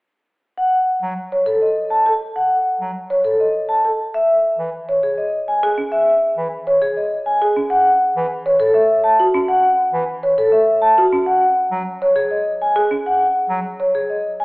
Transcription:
0.58 vibraphone F#5
1.02 bass clarinet F#3
1.32 marimba C#5
1.46 vibraphone A4
1.62 vibraphone D#5
1.90 vibraphone A5
2.06 marimba A4
2.36 vibraphone F#5
2.81 bass clarinet F#3
3.10 marimba C#5
3.25 vibraphone A4
3.40 vibraphone D#5
3.69 vibraphone A5
3.85 marimba A4
4.14 vibraphone E5
4.58 bass clarinet E3
4.89 marimba C#5
5.03 vibraphone G#4
5.18 vibraphone D#5
5.48 vibraphone G#5
5.63 marimba G#4
5.78 marimba C#4
5.92 vibraphone E5
6.37 bass clarinet E3
6.67 marimba C#5
6.82 vibraphone G#4
6.97 vibraphone D#5
7.26 vibraphone G#5
7.42 marimba G#4
7.56 marimba C#4
7.70 vibraphone F#5
8.16 bass clarinet E3
8.46 marimba C#5
8.60 vibraphone A4
8.74 vibraphone E5
9.04 vibraphone A5
9.20 marimba F#4
9.34 marimba C#4
9.48 vibraphone F#5
9.93 bass clarinet E3
10.23 marimba C#5
10.38 vibraphone A4
10.52 vibraphone E5
10.82 vibraphone A5
10.98 marimba F#4
11.13 marimba C#4
11.26 vibraphone F#5
11.71 bass clarinet F#3
12.02 marimba C#5
12.16 vibraphone G#4
12.31 vibraphone D#5
12.62 vibraphone G#5
12.76 marimba G#4
12.91 marimba C#4
13.06 vibraphone F#5
13.49 bass clarinet F#3
13.80 marimba C#5
13.95 vibraphone G#4
14.10 vibraphone D#5
14.40 vibraphone G#5

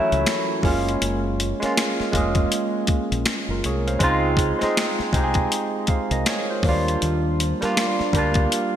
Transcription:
Already playing: tine electric piano E3 F#3 A3 C#4 E4
0.12 fingered electric bass C#2, closed hi-hat
0.26 finger snap, snare, closed hi-hat
0.62 fingered electric bass F#1, tine electric piano G#3 A#3 C#4, kick, open hi-hat
0.66 tine electric piano F4
0.89 closed hi-hat
1.02 fingered electric bass F#1, closed hi-hat
1.40 closed hi-hat
1.60 tine electric piano G#3 A#3 C#4, muted fingered electric bass stroke, snare, closed hi-hat
1.65 tine electric piano F4
1.77 finger snap, snare, closed hi-hat
2.00 muted fingered electric bass stroke, snare
2.12 fingered electric bass F1, tine electric piano G#3 A#3 C#4, kick, closed hi-hat
2.17 tine electric piano G#4
2.35 kick, closed hi-hat
2.52 closed hi-hat
2.87 muted fingered electric bass stroke, kick, closed hi-hat
3.12 fingered electric bass A#1, closed hi-hat
3.26 finger snap, snare, closed hi-hat
3.49 fingered electric bass F#1, tine electric piano F4 A#4
3.64 fingered electric bass C2, tine electric piano G#4 C#5, closed hi-hat
3.87 tine electric piano C5 F5, closed hi-hat
3.99 fingered electric bass C#2, tine electric piano G#3 C4 D#4, kick, closed hi-hat
4.04 tine electric piano F4
4.37 kick, closed hi-hat
4.59 tine electric piano G#3 C4 D#4, muted fingered electric bass stroke, snare, closed hi-hat
4.64 tine electric piano G#4
4.77 finger snap, snare, closed hi-hat
4.99 muted fingered electric bass stroke, snare
5.13 fingered electric bass C2, tine electric piano G#3 C4 D#4, kick, closed hi-hat
5.17 tine electric piano G4
5.24 tine electric piano G#4
5.34 kick, closed hi-hat
5.52 closed hi-hat
5.87 tine electric piano C5 F5, muted fingered electric bass stroke, kick, closed hi-hat
6.11 fingered electric bass C2, tine electric piano A#4 D#5, closed hi-hat
6.26 tine electric piano G#4 C#5, finger snap, snare, closed hi-hat
6.50 tine electric piano F4 C5
6.63 fingered electric bass D#2, tine electric piano F#3 A#3 D4, kick, open hi-hat
6.68 tine electric piano G3 F4
6.88 closed hi-hat
7.02 fingered electric bass D#2, closed hi-hat
7.40 closed hi-hat
7.60 tine electric piano G3 A#3 D4, muted fingered electric bass stroke, snare, closed hi-hat
7.65 tine electric piano F4
7.77 finger snap, snare, closed hi-hat
7.99 muted fingered electric bass stroke, snare
8.13 fingered electric bass D2, tine electric piano G3 A#3 D4, kick, closed hi-hat
8.18 tine electric piano F4
8.34 kick, closed hi-hat
8.52 closed hi-hat

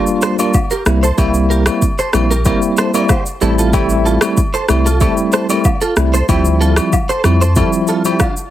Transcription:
Already playing: tine electric piano G3 A#3 D4 F4, impact
0.07 shaker
0.22 clean electric guitar A4 C5, cross-stick, shaker
0.39 tine electric piano G3 A#3 D4 F4, clean electric guitar A#4 D5, high agogo, shaker
0.54 kick, low woodblock, shaker
0.71 clean electric guitar G4 A#4, shaker
0.86 sub bass C2, tine electric piano G3 A#3 C4 E4, cross-stick, shaker
1.03 clean electric guitar A4 C5, shaker
1.17 sub bass C2, tine electric piano G3 A#3 C4 E4, clean electric guitar E4 G4, kick, high agogo, shaker
1.34 shaker
1.50 clean electric guitar G4 A#4, shaker
1.66 tine electric piano G3 A#3 C4 E4, cross-stick, high agogo, shaker
1.82 kick, shaker
1.99 clean electric guitar A4 C5, shaker
2.13 sub bass A#1, tine electric piano G3 A#3 C4 E4, cross-stick, high agogo, shaker
2.31 clean electric guitar G4 A#4, shaker
2.45 tine electric piano G3 A#3 C4 E4, clean electric guitar G4 A#4, kick, high agogo, shaker
2.62 shaker
2.77 clean electric guitar A4 C5, cross-stick, shaker
2.94 tine electric piano G3 A#3 C4 E4, clean electric guitar A#4 D5, high agogo, shaker
3.09 clean electric guitar G4 C5, kick, cross-stick, low woodblock, shaker
3.26 shaker
3.41 sub bass A1, tine electric piano G3 A3 C4 E4, clean electric guitar E4 A4, shaker
3.58 clean electric guitar F4 A4, shaker
3.73 tine electric piano G3 A3 C4 E4, clean electric guitar E4 G4, kick, high agogo, shaker
3.89 shaker
4.05 clean electric guitar F4 A4, shaker
4.21 tine electric piano G3 A3 C4 E4, cross-stick, high agogo, shaker
4.37 kick, shaker
4.54 clean electric guitar A4 C5, shaker
4.69 sub bass C2, tine electric piano G3 A3 C4 E4, cross-stick, high agogo, shaker
4.86 clean electric guitar F4 A4, shaker
5.01 tine electric piano G3 A3 C4 E4, clean electric guitar E4 A4, kick, high agogo, shaker
5.17 shaker
5.32 clean electric guitar A4 C5, cross-stick, shaker
5.49 tine electric piano G3 A3 C4 E4, clean electric guitar A#4 D5, high agogo, shaker
5.64 kick, low woodblock, shaker
5.81 clean electric guitar F4 A4, shaker
5.96 sub bass C2, tine electric piano G3 A3 C4 E4, cross-stick, shaker
6.14 clean electric guitar A4 C5, shaker
6.28 sub bass D2, tine electric piano F3 G3 C4 E4, clean electric guitar E4 G4, kick, high agogo, shaker
6.45 shaker
6.61 clean electric guitar F4 A4, shaker
6.76 tine electric piano F3 G3 C4 E4, cross-stick, high agogo, shaker
6.93 kick, low woodblock, shaker
7.09 clean electric guitar A4 C5, shaker
7.24 sub bass F2, tine electric piano F3 G3 C4 E4, cross-stick, high agogo, shaker
7.41 clean electric guitar A4 C5, shaker
7.56 tine electric piano F3 G3 C4 E4, clean electric guitar F4 A4, kick, high agogo, shaker
7.73 shaker
7.87 clean electric guitar F4 A4, shaker
8.05 tine electric piano F3 G3 C4 E4, clean electric guitar E4 G4, high agogo, shaker
8.20 clean electric guitar D4 F4, kick, cross-stick, low woodblock, shaker
8.37 shaker

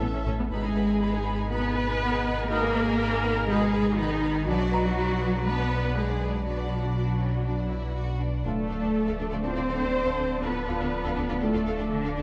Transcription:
Already playing: sub bass A1, trombone section E3 A3, french horn section C#4 E4, ambient pad C#4 E4 A4 E5, violin section A4 E5, grand piano E6 A6
0.02 double bass section A1, cello section A2, viola section B3
0.14 cello section A2, viola section C#4
0.26 double bass section A1, cello section A2, viola section C#4
0.39 cello section A2, viola section B3
0.51 sub bass G#1, double bass section G#1, trombone section B2 D#4, ambient pad B2 D#4 G#4 D#5, cello section G#3, violin section B3 B4 B5, viola section G#4
0.64 violin section D#4 G#4 G#5
0.76 violin section B3 B4 B5
0.88 violin section D#4 G#4 G#5
1.00 violin section B3 B4 B5, grand piano B5
1.13 violin section D#4 G#4 G#5
1.26 violin section B3 B4 B5
1.38 violin section D#4 G#4 G#5
1.50 trombone section B2 D#4, cello section B3, violin section B3 B4 B5, viola section B4
1.62 violin section D#4 G#4 G#5
1.76 violin section B3 B4 B5
1.87 violin section D#4 G#4 G#5
2.00 violin section B3 B4 B5, grand piano F#5
2.12 violin section D#4 G#4 G#5
2.25 violin section B3 B4 B5
2.37 violin section D#4 G#4 G#5
2.49 trombone section B2 D#4, cello section A#3, violin section B3 B4 B5, viola section A#4
2.61 violin section D#4 G#4 G#5
2.74 violin section B3 B4 B5
2.85 violin section D#4 G#4 G#5
2.98 violin section B3 B4 B5
3.10 violin section D#4 G#4 G#5
3.23 violin section B3 B4 B5
3.35 violin section D#4 G#4 G#5
3.48 trombone section B2 D#4, cello section G#3, violin section B3 B4 B5, viola section G#4
3.61 violin section D#4 G#4 G#5
3.73 violin section B3 B4 B5
3.85 violin section D#4 G#4 G#5
3.98 cello section D#3, violin section B3 B4 B5, viola section D#4
4.09 violin section D#4 G#4 G#5
4.23 violin section B3 B4 B5
4.34 violin section D#4 G#4 G#5
4.47 sub bass B1, double bass section B1, trombone section B2 D4, cello section F#3, ambient pad F#3 D4 B4 D5, violin section B3 B4 D5, viola section F#4
4.60 violin section D4 D5 F#5
4.72 violin section B3 B4 D5, grand piano A#5
4.84 violin section D4 D5 F#5
4.96 violin section B3 B4 D5
5.08 violin section D4 D5 F#5
5.21 violin section B3 B4 D5
5.34 violin section D4 D5 F#5
5.46 trombone section B2 D4, violin section B3 B4 D5, cello section B3, viola section B4
5.59 violin section D4 D5 F#5
5.71 violin section B3 B4 D5
5.84 violin section D4 D5 F#5
5.96 cello section G#3, violin section B3 B4 D5, viola section G#4
6.09 violin section D4 D5 F#5
6.21 violin section B3 B4 D5
6.33 violin section D4 D5 F#5
6.45 trombone section B2 D4, cello section F#3, violin section B3 B4 D5, viola section F#4
6.58 violin section D4 D5 F#5
6.70 violin section B3 B4 D5
6.82 violin section D4 D5 F#5
6.96 violin section D4 D5
7.08 violin section F#5
7.20 violin section C#4 D5
7.32 violin section F#5
7.45 trombone section B2 D4, violin section D4 D5
7.58 violin section F#5
7.70 violin section E4 D5
7.83 violin section F#5
7.94 violin section F#4 D5
8.09 violin section F#5
8.20 violin section D4 D5
8.34 violin section F#5
8.44 sub bass D1, double bass section D2, trombone section A2 F4, ambient pad F3 D4 A4 D5, cello section A3, violin section D4 A4, viola section A4
8.69 double bass section D2, violin section D4 A4 F5
8.81 double bass section D2, violin section D4 A4
9.07 double bass section D2, violin section D4 A4 F5
9.20 double bass section D2, violin section D4 A4
9.31 double bass section D2, violin section D4 F4 D5
9.43 double bass section D2, trombone section A2 F4, cello section C4, violin section D4 A4, viola section C5
9.56 double bass section D2, violin section D4 F4 D5
9.68 double bass section D2, violin section D4 A4 F5
9.80 double bass section D2, violin section D4 A4
10.05 double bass section D2, violin section D4 A4 F5
10.17 double bass section D2, violin section D4 A4
10.42 double bass section D2, trombone section A2 F4, cello section B3, violin section D4 A4, viola section B4
10.66 double bass section D2, violin section D4 A4 F5, grand piano F4 F5
10.80 double bass section D2, violin section D4 A4
11.04 double bass section D2, violin section D4 A4 F5
11.17 double bass section D2, violin section D4 A4
11.29 double bass section D2, violin section D4 F4 D5
11.41 double bass section D2, trombone section A2 F4, cello section A3, violin section D4 A4, viola section A4
11.54 double bass section D2, violin section D4 F4 D5
11.67 double bass section D2, violin section D4 A4 F5
11.78 double bass section D2, violin section D4 A4
11.92 cello section D3, viola section D4
12.04 double bass section D2, violin section D4 A4 F5
12.17 double bass section D2, violin section D4 A4

